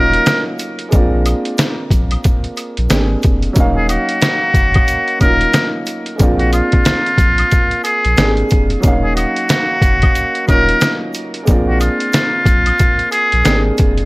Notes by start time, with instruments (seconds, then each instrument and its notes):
Already playing: sub bass D#1, upright piano F#3 A#3 C#4 D#4 F4 F5, muted trumpet A#4
0.13 closed hi-hat
0.26 snare, closed hi-hat, shaker
0.59 closed hi-hat, shaker
0.79 closed hi-hat
0.89 upright piano G#3 A#3 C4, closed hi-hat, shaker
0.93 sub bass A#1, upright piano D4 F4, kick
1.26 closed hi-hat, high woodblock, shaker
1.45 closed hi-hat
1.58 snare, closed hi-hat, shaker
1.91 sub bass A#1, kick, closed hi-hat, shaker
2.11 closed hi-hat, high woodblock
2.24 kick, closed hi-hat, shaker
2.44 closed hi-hat
2.57 closed hi-hat, high woodblock, shaker
2.77 sub bass A#1, closed hi-hat
2.89 sub bass G#1, upright piano G#3 A#3 C4 D4 G4, snare, closed hi-hat, shaker
2.99 upright piano G#4
3.23 sub bass F1, kick, closed hi-hat, shaker
3.42 closed hi-hat
3.53 sub bass D#1, upright piano F#3 A#3 C#4, kick, closed hi-hat, shaker
3.58 upright piano D#4 F5
3.77 muted trumpet G#4
3.89 muted trumpet F#4, closed hi-hat, high woodblock, shaker
4.09 closed hi-hat
4.21 snare, closed hi-hat, shaker
4.54 sub bass F#1, kick, closed hi-hat, shaker
4.74 kick, closed hi-hat, high woodblock
4.88 closed hi-hat, shaker
5.08 closed hi-hat
5.19 sub bass D#1, upright piano F#3 A#3 C#4 D#4 F4, muted trumpet A#4, kick, closed hi-hat, high woodblock, shaker
5.41 closed hi-hat
5.53 snare, closed hi-hat, shaker
5.86 closed hi-hat, shaker
6.06 closed hi-hat
6.16 upright piano G#3 A#3 C4, kick, closed hi-hat, shaker
6.20 sub bass A#1, upright piano D4 F4
6.39 muted trumpet F#4, closed hi-hat
6.53 muted trumpet F4, closed hi-hat, high woodblock, shaker
6.72 kick, closed hi-hat
6.85 snare, closed hi-hat, shaker
7.06 closed hi-hat
7.18 sub bass A#1, kick, closed hi-hat, shaker
7.38 closed hi-hat, high woodblock
7.51 kick, closed hi-hat, shaker
7.71 closed hi-hat
7.84 muted trumpet G#4, closed hi-hat, high woodblock, shaker
8.05 sub bass A#1, closed hi-hat
8.16 sub bass G#1, upright piano G#3 A#3 C4 D4 G4, snare, closed hi-hat, shaker
8.26 upright piano G#4
8.37 closed hi-hat
8.50 sub bass F1, kick, closed hi-hat, shaker
8.70 closed hi-hat
8.80 sub bass D#1, upright piano F#3 A#3 C#4, kick, closed hi-hat, shaker
8.86 upright piano D#4 F5
9.04 muted trumpet G#4
9.16 muted trumpet F#4, closed hi-hat, high woodblock, shaker
9.36 closed hi-hat
9.49 snare, closed hi-hat, shaker
9.82 sub bass F#1, kick, closed hi-hat, shaker
10.02 kick, closed hi-hat, high woodblock
10.15 closed hi-hat, shaker
10.35 closed hi-hat
10.47 sub bass D#1, upright piano F#3 A#3 C#4 D#4 F4, muted trumpet A#4, kick, closed hi-hat, high woodblock, shaker
10.69 closed hi-hat
10.81 snare, closed hi-hat, shaker
11.14 closed hi-hat, shaker
11.34 closed hi-hat
11.43 upright piano G#3 A#3 C4, closed hi-hat, shaker
11.48 sub bass A#1, upright piano D4 F4, kick
11.68 muted trumpet F#4
11.80 muted trumpet F4, closed hi-hat, high woodblock, shaker
12.00 closed hi-hat
12.13 snare, closed hi-hat, shaker
12.46 sub bass A#1, kick, closed hi-hat, shaker
12.66 closed hi-hat, high woodblock
12.79 kick, closed hi-hat, shaker
12.99 closed hi-hat
13.12 muted trumpet G#4, closed hi-hat, high woodblock, shaker
13.32 sub bass A#1, closed hi-hat
13.43 sub bass G#1, upright piano G#3 A#3 C4 D4 G4, snare, closed hi-hat, shaker
13.53 upright piano G#4
13.77 sub bass F1, kick, closed hi-hat, shaker
13.98 closed hi-hat